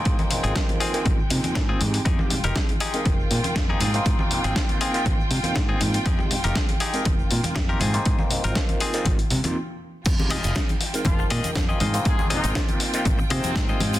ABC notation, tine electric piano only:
X:1
M:4/4
L:1/16
Q:"Swing 16ths" 1/4=120
K:Ab
V:1 name="Tine electric piano"
[B,CEF] [B,CEF]3 [B,CEF]3 [B,CEF]2 z [B,CEF]2 z2 [A,CEG]2- | [A,CEG] [A,CEG] z2 [A,CEA] z2 [A,CEB]6 [B,CEF]2 [B,CEF]- | [B,CEF] [B,CEF]3 [B,CEF]3 [B,CEF]2 z2 [B,CEF]4- [B,CEF] | z [A,CEG] z2 [A,CEA] z2 [A,CEB]6 [B,CEF]2 [B,CEF]- |
[B,CEF] [B,CEF]3 [B,CEF]3 [B,CEF]2 z2 [B,CEF] z4 | z [A,CEG] z2 [A,CEA] z2 [A,CEB]6 [B,CEF]2 [B,CEF]- | [B,CEF] [B,CEF]3 [B,CEF]3 [B,CEF]2 z [B,CEF]2 [B,CEF]2 [A,CEG]2 |]